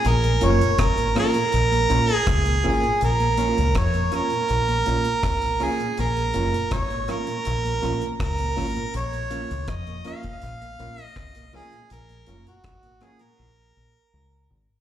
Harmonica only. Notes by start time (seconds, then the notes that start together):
0.08 A#4
0.45 C#5
0.82 A#4
1.19 A#4
2.15 G#4
2.67 G#4
3.04 A#4
3.78 C#5
4.15 A#4
5.63 G#4
6.00 A#4
6.73 C#5
7.11 A#4
8.22 A#4
8.96 C#5
9.70 D#5
10.07 F5
11.03 D#5
11.56 G#4
11.92 A#4
12.48 F#4
13.03 G#4
13.22 A#4